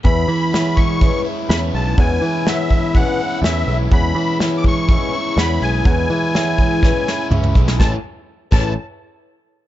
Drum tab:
CC |----------------|----------------|----------------|----------------|
HH |o---o---o---o---|o---o---o---o---|o---o---o---o---|o---o-----------|
SD |----o-------o---|----o-------o---|----o-------o---|----o---o-o----o|
T2 |----------------|----------------|----------------|------------oo--|
BD |o-----o-o-------|o-----o-o-------|o-----o-o-------|o-----o-o-----o-|

CC |------x---------|
HH |----------------|
SD |o---------------|
T2 |----------------|
BD |o-----o---------|